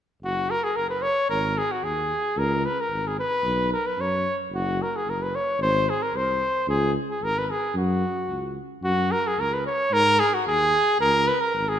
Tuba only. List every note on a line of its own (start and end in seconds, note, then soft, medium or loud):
0.23 0.52 F#1 medium
0.76 1.06 F#1 soft
1.29 1.59 G#1 medium
1.83 2.12 D#2 medium
2.37 2.66 C#2 medium
2.89 3.19 G#1 medium
3.43 3.72 B1 medium
3.97 4.27 F#2 medium
4.51 4.81 F#1 medium
5.05 5.35 F#1 medium
5.59 5.89 G#1 medium
6.13 6.43 C2 medium
6.67 6.97 C#2 medium
7.21 7.51 G#1 medium
7.74 8.04 F#2 medium
8.29 8.58 C#2 medium
8.82 9.12 F#2 medium
9.37 9.67 C#2 medium
9.91 10.21 G#2 medium
10.46 10.75 D#2 medium
11.00 11.29 C#2 medium
11.53 11.79 G#1 medium